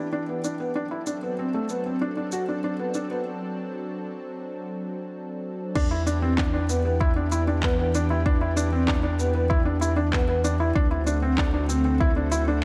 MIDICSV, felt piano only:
0, 0, Header, 1, 2, 480
1, 0, Start_track
1, 0, Key_signature, 1, "minor"
1, 0, Tempo, 625000
1, 581, Time_signature, 4, 2, 24, 8
1, 9708, End_track
2, 0, Start_track
2, 0, Title_t, "Felt piano"
2, 0, Program_c, 0, 0
2, 96, Note_on_c, 0, 62, 77
2, 169, Note_off_c, 0, 62, 0
2, 221, Note_on_c, 0, 59, 60
2, 292, Note_off_c, 0, 59, 0
2, 340, Note_on_c, 0, 62, 67
2, 412, Note_off_c, 0, 62, 0
2, 461, Note_on_c, 0, 59, 66
2, 533, Note_off_c, 0, 59, 0
2, 580, Note_on_c, 0, 62, 81
2, 652, Note_off_c, 0, 62, 0
2, 699, Note_on_c, 0, 64, 59
2, 771, Note_off_c, 0, 64, 0
2, 821, Note_on_c, 0, 62, 65
2, 892, Note_off_c, 0, 62, 0
2, 942, Note_on_c, 0, 59, 61
2, 1014, Note_off_c, 0, 59, 0
2, 1066, Note_on_c, 0, 60, 67
2, 1136, Note_off_c, 0, 60, 0
2, 1185, Note_on_c, 0, 57, 64
2, 1255, Note_off_c, 0, 57, 0
2, 1307, Note_on_c, 0, 59, 64
2, 1376, Note_off_c, 0, 59, 0
2, 1428, Note_on_c, 0, 60, 59
2, 1498, Note_off_c, 0, 60, 0
2, 1547, Note_on_c, 0, 62, 79
2, 1617, Note_off_c, 0, 62, 0
2, 1666, Note_on_c, 0, 62, 63
2, 1736, Note_off_c, 0, 62, 0
2, 1787, Note_on_c, 0, 66, 66
2, 1856, Note_off_c, 0, 66, 0
2, 1910, Note_on_c, 0, 62, 66
2, 1979, Note_off_c, 0, 62, 0
2, 2027, Note_on_c, 0, 62, 76
2, 2097, Note_off_c, 0, 62, 0
2, 2145, Note_on_c, 0, 59, 65
2, 2215, Note_off_c, 0, 59, 0
2, 2265, Note_on_c, 0, 62, 65
2, 2335, Note_off_c, 0, 62, 0
2, 2386, Note_on_c, 0, 59, 68
2, 2456, Note_off_c, 0, 59, 0
2, 4419, Note_on_c, 0, 62, 97
2, 4491, Note_off_c, 0, 62, 0
2, 4538, Note_on_c, 0, 64, 72
2, 4611, Note_off_c, 0, 64, 0
2, 4658, Note_on_c, 0, 62, 78
2, 4731, Note_off_c, 0, 62, 0
2, 4779, Note_on_c, 0, 60, 72
2, 4851, Note_off_c, 0, 60, 0
2, 4898, Note_on_c, 0, 62, 81
2, 4970, Note_off_c, 0, 62, 0
2, 5020, Note_on_c, 0, 62, 76
2, 5092, Note_off_c, 0, 62, 0
2, 5142, Note_on_c, 0, 59, 79
2, 5213, Note_off_c, 0, 59, 0
2, 5261, Note_on_c, 0, 59, 69
2, 5333, Note_off_c, 0, 59, 0
2, 5379, Note_on_c, 0, 64, 95
2, 5451, Note_off_c, 0, 64, 0
2, 5500, Note_on_c, 0, 62, 72
2, 5572, Note_off_c, 0, 62, 0
2, 5620, Note_on_c, 0, 64, 79
2, 5692, Note_off_c, 0, 64, 0
2, 5740, Note_on_c, 0, 62, 72
2, 5812, Note_off_c, 0, 62, 0
2, 5862, Note_on_c, 0, 59, 91
2, 5933, Note_off_c, 0, 59, 0
2, 5983, Note_on_c, 0, 59, 72
2, 6054, Note_off_c, 0, 59, 0
2, 6105, Note_on_c, 0, 62, 79
2, 6176, Note_off_c, 0, 62, 0
2, 6223, Note_on_c, 0, 64, 77
2, 6294, Note_off_c, 0, 64, 0
2, 6341, Note_on_c, 0, 62, 101
2, 6413, Note_off_c, 0, 62, 0
2, 6461, Note_on_c, 0, 64, 74
2, 6533, Note_off_c, 0, 64, 0
2, 6579, Note_on_c, 0, 62, 81
2, 6651, Note_off_c, 0, 62, 0
2, 6699, Note_on_c, 0, 60, 78
2, 6771, Note_off_c, 0, 60, 0
2, 6818, Note_on_c, 0, 62, 86
2, 6890, Note_off_c, 0, 62, 0
2, 6937, Note_on_c, 0, 62, 71
2, 7010, Note_off_c, 0, 62, 0
2, 7059, Note_on_c, 0, 59, 77
2, 7131, Note_off_c, 0, 59, 0
2, 7177, Note_on_c, 0, 59, 71
2, 7250, Note_off_c, 0, 59, 0
2, 7294, Note_on_c, 0, 64, 92
2, 7368, Note_off_c, 0, 64, 0
2, 7414, Note_on_c, 0, 62, 74
2, 7488, Note_off_c, 0, 62, 0
2, 7535, Note_on_c, 0, 64, 79
2, 7609, Note_off_c, 0, 64, 0
2, 7653, Note_on_c, 0, 62, 81
2, 7727, Note_off_c, 0, 62, 0
2, 7778, Note_on_c, 0, 59, 86
2, 7850, Note_off_c, 0, 59, 0
2, 7899, Note_on_c, 0, 59, 76
2, 7971, Note_off_c, 0, 59, 0
2, 8020, Note_on_c, 0, 62, 86
2, 8092, Note_off_c, 0, 62, 0
2, 8140, Note_on_c, 0, 64, 76
2, 8212, Note_off_c, 0, 64, 0
2, 8259, Note_on_c, 0, 62, 98
2, 8331, Note_off_c, 0, 62, 0
2, 8377, Note_on_c, 0, 64, 75
2, 8450, Note_off_c, 0, 64, 0
2, 8498, Note_on_c, 0, 62, 76
2, 8570, Note_off_c, 0, 62, 0
2, 8619, Note_on_c, 0, 60, 73
2, 8691, Note_off_c, 0, 60, 0
2, 8740, Note_on_c, 0, 62, 80
2, 8812, Note_off_c, 0, 62, 0
2, 8860, Note_on_c, 0, 62, 72
2, 8932, Note_off_c, 0, 62, 0
2, 8977, Note_on_c, 0, 60, 75
2, 9049, Note_off_c, 0, 60, 0
2, 9098, Note_on_c, 0, 60, 72
2, 9171, Note_off_c, 0, 60, 0
2, 9219, Note_on_c, 0, 64, 93
2, 9291, Note_off_c, 0, 64, 0
2, 9341, Note_on_c, 0, 62, 75
2, 9412, Note_off_c, 0, 62, 0
2, 9458, Note_on_c, 0, 64, 84
2, 9530, Note_off_c, 0, 64, 0
2, 9583, Note_on_c, 0, 62, 75
2, 9654, Note_off_c, 0, 62, 0
2, 9708, End_track
0, 0, End_of_file